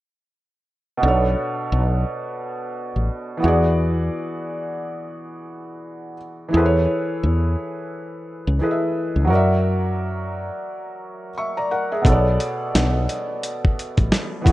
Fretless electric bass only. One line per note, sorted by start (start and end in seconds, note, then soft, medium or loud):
1.03 1.34 B1 loud
1.72 2.03 B1 medium
2.96 3.08 A1 medium
3.44 4.08 E2 loud
6.54 6.86 E2 loud
7.23 7.55 E2 medium
8.47 8.60 C#2 medium
9.16 9.30 C#2 medium
9.30 10.50 F#2 medium
12.05 12.37 B1 loud
12.75 13.06 B1 medium
13.98 14.11 A1 medium
14.46 14.52 E2 loud